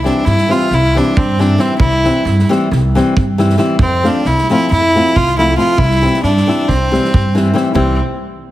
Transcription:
0.04 E3 G3 C4 D4 E4, snare
0.26 G2 E4, snare
0.38 snare
0.48 E3 G3 C4 E4 F4, snare
0.71 C2 E4, snare
0.95 E3 G3 C4 D4 E4, snare
1.17 G2 C4, kick
1.39 E3 G3 C4 D4 E4, snare
1.58 E3 G3 C4 E4, snare
1.79 C2 E4, kick
2.04 E3 G3 C4 E4, snare
2.25 G2, snare
2.39 snare
2.49 E3 G3 C4 E4, snare
2.71 C2, snare
2.95 E3 G3 C4 E4, snare
3.17 G2, kick
3.38 E3 G3 C4 E4, snare
3.50 snare
3.58 E3 G3 C4 E4, snare
3.79 F2 C4, kick
4.03 F3 A3 C4 F4, snare
4.08 D4
4.25 C2 E4, snare
4.38 snare
4.50 F3 A3 C4 E4 F4, snare
4.71 F2 E4, snare
4.95 F3 A3 C4 F4, snare
5.16 C2 F4, kick
5.37 F3 A3 C4 E4 F4, snare
5.49 snare
5.57 F3 A3 C4 F4, snare
5.78 C2 E4, kick
5.91 snare
6.02 E3 G3 C4 E4, snare
6.14 snare
6.23 G2 D4, snare
6.37 snare
6.47 E3 G3 C4 E4, snare
6.68 C2 C4, kick, snare
6.91 E3 G3 C4 E4, snare
7.05 snare
7.14 G2, kick
7.35 E3 G3 C4 E4, snare
7.54 E3 G3 C4 E4, snare
7.75 C2 E3 G3 C4 E4, kick

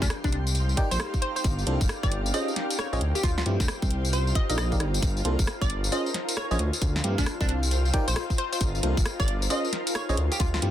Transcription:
Already playing: G4 F5 G5 C6
0.02 D2 D4, kick, snare, tambourine
0.10 cross-stick, closed hi-hat
0.24 C2 D4, kick, tambourine
0.32 D4 D#4, closed hi-hat
0.47 tambourine
0.55 closed hi-hat, tambourine
0.69 D5, tambourine
0.77 D#4 G4 A#4 D5 G5, kick, closed hi-hat
0.91 A#1 C5, closed hi-hat, tambourine
1.00 cross-stick, closed hi-hat
1.14 kick, tambourine
1.22 C5, closed hi-hat
1.36 C5, closed hi-hat, tambourine
1.44 G1, kick, closed hi-hat, tambourine
1.53 A#4
1.59 tambourine
1.67 C2 A#3 D4 F4 A4 C5, closed hi-hat
1.81 G1, kick, tambourine
1.89 cross-stick, closed hi-hat, tambourine
2.03 G1 D5, kick, tambourine
2.12 closed hi-hat
2.26 tambourine
2.34 C#4 F4 G#4 C5 D#5, closed hi-hat, tambourine
2.48 tambourine
2.56 snare, closed hi-hat
2.66 C5
2.71 closed hi-hat, tambourine
2.79 C#5, cross-stick, closed hi-hat
2.93 A#1 C#4 F4 G#4 C5 C#5 D#5, tambourine
3.01 D2 F4, closed hi-hat
3.15 G4, closed hi-hat, tambourine
3.23 D2 F4, kick, closed hi-hat, tambourine
3.38 F4, snare, tambourine
3.46 G2 F3 A3 C4 E4 G4, closed hi-hat
3.60 D2, kick, snare, tambourine
3.68 cross-stick, closed hi-hat, tambourine
3.82 C2, kick, tambourine
3.91 closed hi-hat
4.05 tambourine
4.13 C5, closed hi-hat, tambourine
4.27 tambourine
4.35 D#5, kick, closed hi-hat
4.49 A#1 D#4 G4 A#4 D5 D#5 F5, closed hi-hat, tambourine
4.58 D#5, cross-stick, closed hi-hat, tambourine
4.72 D#4 G4 A#4 D5 F5, kick, tambourine
4.80 G1, cross-stick, closed hi-hat
4.94 closed hi-hat, tambourine
5.02 G1 F4 F5, kick, closed hi-hat, tambourine
5.17 tambourine
5.25 C2 A#3 D4 F4 A4 C5, closed hi-hat
5.39 G1, kick, tambourine
5.47 cross-stick, closed hi-hat, tambourine
5.61 G1 D5, kick, tambourine
5.70 closed hi-hat
5.84 tambourine
5.92 C#4 F4 G#4 C5 D#5, closed hi-hat, tambourine
6.06 tambourine
6.14 snare, closed hi-hat
6.29 closed hi-hat, tambourine
6.37 C#5, cross-stick, closed hi-hat
6.51 A#1 C#4 F4 G#4 C5 C#5 D#5, tambourine
6.59 D2 F4, closed hi-hat
6.73 closed hi-hat, tambourine
6.78 C5
6.82 D2, kick, closed hi-hat, tambourine
6.96 snare, tambourine
7.04 G2 F3 A3 C4 E4 G4, closed hi-hat
7.18 D2 D4, kick, snare, tambourine
7.26 cross-stick, closed hi-hat, tambourine
7.41 C2 D4, kick, tambourine
7.49 D4, closed hi-hat
7.61 D#5, tambourine
7.71 closed hi-hat, tambourine
7.85 tambourine
7.94 D#4 G4 A#4 D5 G5, kick, closed hi-hat
8.08 A#1 C5, closed hi-hat, tambourine
8.16 cross-stick, closed hi-hat
8.30 kick, tambourine
8.38 C5, closed hi-hat
8.53 C5, closed hi-hat, tambourine
8.61 G1, kick, closed hi-hat, tambourine
8.70 A#4
8.75 tambourine
8.83 C2 A#3 D4 F4 A4 C5, closed hi-hat
8.97 G1, kick, tambourine
9.05 cross-stick, closed hi-hat, tambourine
9.20 G1 D5, kick, tambourine
9.28 closed hi-hat
9.42 tambourine
9.50 C#4 F4 G#4 C5 D#5, closed hi-hat, tambourine
9.65 tambourine
9.73 snare, closed hi-hat
9.87 closed hi-hat, tambourine
9.95 C#5, cross-stick, closed hi-hat
10.09 A#1 C#4 F4 G#4 C5 C#5 D#5, tambourine
10.17 D2 F4, closed hi-hat
10.32 G4 C5, closed hi-hat, tambourine
10.40 D2 F4, kick, closed hi-hat, tambourine
10.46 G5
10.54 F4, snare, tambourine
10.62 G2 F3 A3 C4 E4 G4, closed hi-hat

